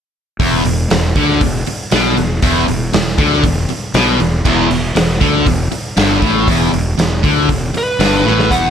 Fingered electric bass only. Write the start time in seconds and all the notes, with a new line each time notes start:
0.39 E1
0.65 E1
0.91 E1
1.16 D2
1.41 E1
1.68 muted fingered electric bass stroke
1.93 B1
2.18 E1
2.43 E1
2.68 E1
2.94 E1
3.18 D2
3.44 E1
3.70 muted fingered electric bass stroke
3.94 B1
4.19 E1
4.45 E1
4.70 E1
4.95 E1
5.21 D2
5.46 E1
5.72 muted fingered electric bass stroke
5.97 G1
6.22 A1
6.47 E1
6.73 E1
6.98 E1
7.24 D2
7.49 E1
7.75 muted fingered electric bass stroke
7.99 G1
8.25 A1
8.51 E1